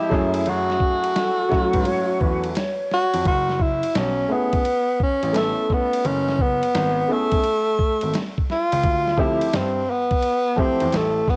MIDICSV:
0, 0, Header, 1, 6, 480
1, 0, Start_track
1, 0, Key_signature, 3, "minor"
1, 0, Tempo, 697674
1, 319, Time_signature, 4, 2, 24, 8
1, 2238, Key_signature, 3, "minor"
1, 7817, End_track
2, 0, Start_track
2, 0, Title_t, "Flute"
2, 0, Program_c, 0, 73
2, 800, Note_on_c, 0, 69, 95
2, 1196, Note_on_c, 0, 71, 97
2, 1206, Note_off_c, 0, 69, 0
2, 1277, Note_on_c, 0, 73, 112
2, 1287, Note_off_c, 0, 71, 0
2, 1517, Note_on_c, 0, 71, 98
2, 1528, Note_off_c, 0, 73, 0
2, 1765, Note_on_c, 0, 73, 91
2, 1775, Note_off_c, 0, 71, 0
2, 2242, Note_off_c, 0, 73, 0
2, 7817, End_track
3, 0, Start_track
3, 0, Title_t, "Upright piano"
3, 0, Program_c, 1, 0
3, 0, Note_on_c, 1, 53, 81
3, 0, Note_on_c, 1, 56, 71
3, 0, Note_on_c, 1, 60, 68
3, 0, Note_on_c, 1, 67, 92
3, 0, Note_on_c, 1, 75, 73
3, 62, Note_on_c, 1, 54, 78
3, 66, Note_on_c, 1, 57, 72
3, 70, Note_off_c, 1, 53, 0
3, 70, Note_on_c, 1, 61, 71
3, 73, Note_off_c, 1, 56, 0
3, 75, Note_on_c, 1, 64, 66
3, 76, Note_off_c, 1, 60, 0
3, 77, Note_off_c, 1, 75, 0
3, 79, Note_off_c, 1, 67, 0
3, 81, Note_on_c, 1, 68, 74
3, 955, Note_off_c, 1, 54, 0
3, 957, Note_off_c, 1, 57, 0
3, 959, Note_off_c, 1, 61, 0
3, 961, Note_off_c, 1, 64, 0
3, 964, Note_off_c, 1, 68, 0
3, 1024, Note_on_c, 1, 54, 77
3, 1027, Note_on_c, 1, 57, 71
3, 1034, Note_on_c, 1, 61, 69
3, 1038, Note_on_c, 1, 64, 69
3, 1044, Note_on_c, 1, 66, 79
3, 1718, Note_off_c, 1, 54, 0
3, 1720, Note_off_c, 1, 57, 0
3, 1724, Note_off_c, 1, 61, 0
3, 1725, Note_off_c, 1, 64, 0
3, 1728, Note_off_c, 1, 66, 0
3, 2947, Note_on_c, 1, 57, 59
3, 2954, Note_on_c, 1, 59, 50
3, 2957, Note_on_c, 1, 61, 53
3, 2962, Note_on_c, 1, 64, 54
3, 2968, Note_on_c, 1, 68, 67
3, 3144, Note_off_c, 1, 57, 0
3, 3147, Note_off_c, 1, 59, 0
3, 3148, Note_off_c, 1, 61, 0
3, 3151, Note_off_c, 1, 64, 0
3, 3154, Note_off_c, 1, 68, 0
3, 3664, Note_on_c, 1, 57, 63
3, 3668, Note_on_c, 1, 59, 60
3, 3674, Note_on_c, 1, 61, 58
3, 3679, Note_on_c, 1, 64, 59
3, 3685, Note_on_c, 1, 69, 71
3, 4359, Note_off_c, 1, 57, 0
3, 4361, Note_off_c, 1, 59, 0
3, 4364, Note_off_c, 1, 61, 0
3, 4366, Note_off_c, 1, 64, 0
3, 4369, Note_off_c, 1, 69, 0
3, 4869, Note_on_c, 1, 57, 60
3, 4874, Note_on_c, 1, 59, 60
3, 4879, Note_on_c, 1, 61, 52
3, 4884, Note_on_c, 1, 64, 57
3, 4889, Note_on_c, 1, 68, 66
3, 5064, Note_off_c, 1, 57, 0
3, 5067, Note_off_c, 1, 59, 0
3, 5070, Note_off_c, 1, 61, 0
3, 5072, Note_off_c, 1, 64, 0
3, 5074, Note_off_c, 1, 68, 0
3, 6308, Note_on_c, 1, 53, 75
3, 6311, Note_on_c, 1, 57, 63
3, 6318, Note_on_c, 1, 60, 73
3, 6324, Note_on_c, 1, 64, 70
3, 6328, Note_on_c, 1, 67, 84
3, 6504, Note_off_c, 1, 53, 0
3, 6505, Note_off_c, 1, 57, 0
3, 6509, Note_off_c, 1, 60, 0
3, 6512, Note_off_c, 1, 64, 0
3, 6514, Note_off_c, 1, 67, 0
3, 7264, Note_on_c, 1, 53, 72
3, 7270, Note_on_c, 1, 57, 69
3, 7273, Note_on_c, 1, 60, 69
3, 7280, Note_on_c, 1, 64, 67
3, 7284, Note_on_c, 1, 67, 75
3, 7462, Note_off_c, 1, 53, 0
3, 7465, Note_off_c, 1, 57, 0
3, 7466, Note_off_c, 1, 60, 0
3, 7470, Note_off_c, 1, 64, 0
3, 7472, Note_off_c, 1, 67, 0
3, 7817, End_track
4, 0, Start_track
4, 0, Title_t, "Tenor saxophone"
4, 0, Program_c, 2, 66
4, 0, Note_on_c, 2, 64, 93
4, 341, Note_on_c, 2, 66, 100
4, 351, Note_off_c, 2, 64, 0
4, 1769, Note_off_c, 2, 66, 0
4, 2019, Note_on_c, 2, 66, 117
4, 2233, Note_off_c, 2, 66, 0
4, 2253, Note_on_c, 2, 66, 110
4, 2492, Note_on_c, 2, 64, 97
4, 2502, Note_off_c, 2, 66, 0
4, 2730, Note_on_c, 2, 61, 97
4, 2740, Note_off_c, 2, 64, 0
4, 2974, Note_on_c, 2, 59, 110
4, 2984, Note_off_c, 2, 61, 0
4, 3446, Note_off_c, 2, 59, 0
4, 3461, Note_on_c, 2, 61, 98
4, 3693, Note_on_c, 2, 57, 93
4, 3703, Note_off_c, 2, 61, 0
4, 3943, Note_on_c, 2, 59, 95
4, 3953, Note_off_c, 2, 57, 0
4, 4171, Note_on_c, 2, 61, 106
4, 4181, Note_off_c, 2, 59, 0
4, 4417, Note_on_c, 2, 59, 97
4, 4427, Note_off_c, 2, 61, 0
4, 4900, Note_on_c, 2, 57, 113
4, 4910, Note_off_c, 2, 59, 0
4, 5681, Note_off_c, 2, 57, 0
4, 5854, Note_on_c, 2, 65, 104
4, 6328, Note_on_c, 2, 64, 93
4, 6338, Note_off_c, 2, 65, 0
4, 6569, Note_on_c, 2, 60, 91
4, 6579, Note_off_c, 2, 64, 0
4, 6815, Note_on_c, 2, 59, 105
4, 6825, Note_off_c, 2, 60, 0
4, 7289, Note_on_c, 2, 60, 101
4, 7300, Note_off_c, 2, 59, 0
4, 7541, Note_on_c, 2, 57, 89
4, 7551, Note_off_c, 2, 60, 0
4, 7770, Note_on_c, 2, 59, 90
4, 7780, Note_off_c, 2, 57, 0
4, 7817, Note_off_c, 2, 59, 0
4, 7817, End_track
5, 0, Start_track
5, 0, Title_t, "Grand piano"
5, 0, Program_c, 3, 0
5, 81, Note_on_c, 3, 42, 97
5, 268, Note_off_c, 3, 42, 0
5, 323, Note_on_c, 3, 42, 106
5, 509, Note_off_c, 3, 42, 0
5, 1196, Note_on_c, 3, 44, 90
5, 1260, Note_off_c, 3, 44, 0
5, 1522, Note_on_c, 3, 40, 80
5, 1708, Note_off_c, 3, 40, 0
5, 2157, Note_on_c, 3, 41, 84
5, 2221, Note_off_c, 3, 41, 0
5, 2243, Note_on_c, 3, 30, 96
5, 2617, Note_off_c, 3, 30, 0
5, 2721, Note_on_c, 3, 35, 93
5, 2908, Note_off_c, 3, 35, 0
5, 3597, Note_on_c, 3, 33, 81
5, 3785, Note_off_c, 3, 33, 0
5, 4160, Note_on_c, 3, 30, 92
5, 4536, Note_off_c, 3, 30, 0
5, 4645, Note_on_c, 3, 32, 103
5, 4830, Note_off_c, 3, 32, 0
5, 5521, Note_on_c, 3, 32, 78
5, 5584, Note_off_c, 3, 32, 0
5, 6001, Note_on_c, 3, 37, 98
5, 6064, Note_off_c, 3, 37, 0
5, 6081, Note_on_c, 3, 38, 94
5, 6456, Note_off_c, 3, 38, 0
5, 6562, Note_on_c, 3, 43, 94
5, 6749, Note_off_c, 3, 43, 0
5, 7437, Note_on_c, 3, 40, 91
5, 7501, Note_off_c, 3, 40, 0
5, 7515, Note_on_c, 3, 33, 95
5, 7705, Note_off_c, 3, 33, 0
5, 7817, End_track
6, 0, Start_track
6, 0, Title_t, "Drums"
6, 78, Note_on_c, 9, 36, 82
6, 80, Note_on_c, 9, 38, 35
6, 147, Note_off_c, 9, 36, 0
6, 149, Note_off_c, 9, 38, 0
6, 232, Note_on_c, 9, 51, 74
6, 300, Note_off_c, 9, 51, 0
6, 314, Note_on_c, 9, 51, 68
6, 383, Note_off_c, 9, 51, 0
6, 481, Note_on_c, 9, 38, 35
6, 550, Note_off_c, 9, 38, 0
6, 551, Note_on_c, 9, 36, 85
6, 620, Note_off_c, 9, 36, 0
6, 713, Note_on_c, 9, 51, 57
6, 782, Note_off_c, 9, 51, 0
6, 796, Note_on_c, 9, 44, 52
6, 796, Note_on_c, 9, 51, 66
6, 798, Note_on_c, 9, 38, 123
6, 865, Note_off_c, 9, 44, 0
6, 865, Note_off_c, 9, 51, 0
6, 867, Note_off_c, 9, 38, 0
6, 1042, Note_on_c, 9, 38, 34
6, 1047, Note_on_c, 9, 36, 78
6, 1111, Note_off_c, 9, 38, 0
6, 1115, Note_off_c, 9, 36, 0
6, 1191, Note_on_c, 9, 51, 64
6, 1195, Note_on_c, 9, 36, 96
6, 1260, Note_off_c, 9, 51, 0
6, 1264, Note_off_c, 9, 36, 0
6, 1273, Note_on_c, 9, 51, 76
6, 1342, Note_off_c, 9, 51, 0
6, 1519, Note_on_c, 9, 36, 98
6, 1588, Note_off_c, 9, 36, 0
6, 1675, Note_on_c, 9, 51, 47
6, 1744, Note_off_c, 9, 51, 0
6, 1756, Note_on_c, 9, 44, 50
6, 1756, Note_on_c, 9, 51, 65
6, 1766, Note_on_c, 9, 38, 110
6, 1824, Note_off_c, 9, 44, 0
6, 1824, Note_off_c, 9, 51, 0
6, 1835, Note_off_c, 9, 38, 0
6, 2005, Note_on_c, 9, 38, 34
6, 2074, Note_off_c, 9, 38, 0
6, 2158, Note_on_c, 9, 51, 75
6, 2227, Note_off_c, 9, 51, 0
6, 2239, Note_on_c, 9, 51, 66
6, 2240, Note_on_c, 9, 36, 106
6, 2308, Note_off_c, 9, 51, 0
6, 2309, Note_off_c, 9, 36, 0
6, 2406, Note_on_c, 9, 38, 36
6, 2475, Note_off_c, 9, 38, 0
6, 2475, Note_on_c, 9, 36, 84
6, 2543, Note_off_c, 9, 36, 0
6, 2636, Note_on_c, 9, 51, 65
6, 2705, Note_off_c, 9, 51, 0
6, 2719, Note_on_c, 9, 44, 50
6, 2719, Note_on_c, 9, 51, 68
6, 2721, Note_on_c, 9, 38, 113
6, 2788, Note_off_c, 9, 44, 0
6, 2788, Note_off_c, 9, 51, 0
6, 2790, Note_off_c, 9, 38, 0
6, 3115, Note_on_c, 9, 51, 60
6, 3118, Note_on_c, 9, 36, 95
6, 3184, Note_off_c, 9, 51, 0
6, 3187, Note_off_c, 9, 36, 0
6, 3200, Note_on_c, 9, 51, 85
6, 3269, Note_off_c, 9, 51, 0
6, 3441, Note_on_c, 9, 36, 88
6, 3510, Note_off_c, 9, 36, 0
6, 3597, Note_on_c, 9, 51, 47
6, 3666, Note_off_c, 9, 51, 0
6, 3676, Note_on_c, 9, 44, 49
6, 3676, Note_on_c, 9, 51, 70
6, 3687, Note_on_c, 9, 38, 120
6, 3745, Note_off_c, 9, 44, 0
6, 3745, Note_off_c, 9, 51, 0
6, 3756, Note_off_c, 9, 38, 0
6, 3922, Note_on_c, 9, 36, 85
6, 3925, Note_on_c, 9, 38, 33
6, 3990, Note_off_c, 9, 36, 0
6, 3993, Note_off_c, 9, 38, 0
6, 4082, Note_on_c, 9, 51, 74
6, 4151, Note_off_c, 9, 51, 0
6, 4161, Note_on_c, 9, 51, 66
6, 4229, Note_off_c, 9, 51, 0
6, 4324, Note_on_c, 9, 38, 34
6, 4393, Note_off_c, 9, 38, 0
6, 4395, Note_on_c, 9, 36, 83
6, 4464, Note_off_c, 9, 36, 0
6, 4560, Note_on_c, 9, 51, 60
6, 4628, Note_off_c, 9, 51, 0
6, 4642, Note_on_c, 9, 44, 51
6, 4642, Note_on_c, 9, 51, 75
6, 4644, Note_on_c, 9, 38, 114
6, 4710, Note_off_c, 9, 44, 0
6, 4710, Note_off_c, 9, 51, 0
6, 4713, Note_off_c, 9, 38, 0
6, 5034, Note_on_c, 9, 51, 62
6, 5038, Note_on_c, 9, 36, 105
6, 5103, Note_off_c, 9, 51, 0
6, 5106, Note_off_c, 9, 36, 0
6, 5116, Note_on_c, 9, 51, 85
6, 5185, Note_off_c, 9, 51, 0
6, 5360, Note_on_c, 9, 36, 98
6, 5429, Note_off_c, 9, 36, 0
6, 5512, Note_on_c, 9, 51, 55
6, 5581, Note_off_c, 9, 51, 0
6, 5597, Note_on_c, 9, 44, 50
6, 5597, Note_on_c, 9, 51, 69
6, 5608, Note_on_c, 9, 38, 127
6, 5666, Note_off_c, 9, 44, 0
6, 5666, Note_off_c, 9, 51, 0
6, 5677, Note_off_c, 9, 38, 0
6, 5764, Note_on_c, 9, 36, 83
6, 5833, Note_off_c, 9, 36, 0
6, 5846, Note_on_c, 9, 38, 32
6, 5915, Note_off_c, 9, 38, 0
6, 6000, Note_on_c, 9, 51, 75
6, 6069, Note_off_c, 9, 51, 0
6, 6078, Note_on_c, 9, 51, 72
6, 6079, Note_on_c, 9, 36, 105
6, 6147, Note_off_c, 9, 51, 0
6, 6148, Note_off_c, 9, 36, 0
6, 6244, Note_on_c, 9, 38, 35
6, 6313, Note_off_c, 9, 38, 0
6, 6314, Note_on_c, 9, 36, 79
6, 6382, Note_off_c, 9, 36, 0
6, 6476, Note_on_c, 9, 51, 66
6, 6545, Note_off_c, 9, 51, 0
6, 6559, Note_on_c, 9, 44, 50
6, 6559, Note_on_c, 9, 51, 72
6, 6561, Note_on_c, 9, 38, 118
6, 6628, Note_off_c, 9, 44, 0
6, 6628, Note_off_c, 9, 51, 0
6, 6630, Note_off_c, 9, 38, 0
6, 6954, Note_on_c, 9, 51, 60
6, 6956, Note_on_c, 9, 36, 102
6, 7023, Note_off_c, 9, 51, 0
6, 7025, Note_off_c, 9, 36, 0
6, 7034, Note_on_c, 9, 51, 83
6, 7103, Note_off_c, 9, 51, 0
6, 7278, Note_on_c, 9, 36, 89
6, 7347, Note_off_c, 9, 36, 0
6, 7432, Note_on_c, 9, 51, 50
6, 7501, Note_off_c, 9, 51, 0
6, 7516, Note_on_c, 9, 44, 51
6, 7516, Note_on_c, 9, 51, 69
6, 7526, Note_on_c, 9, 38, 119
6, 7585, Note_off_c, 9, 44, 0
6, 7585, Note_off_c, 9, 51, 0
6, 7595, Note_off_c, 9, 38, 0
6, 7758, Note_on_c, 9, 36, 83
6, 7761, Note_on_c, 9, 38, 32
6, 7817, Note_off_c, 9, 36, 0
6, 7817, Note_off_c, 9, 38, 0
6, 7817, End_track
0, 0, End_of_file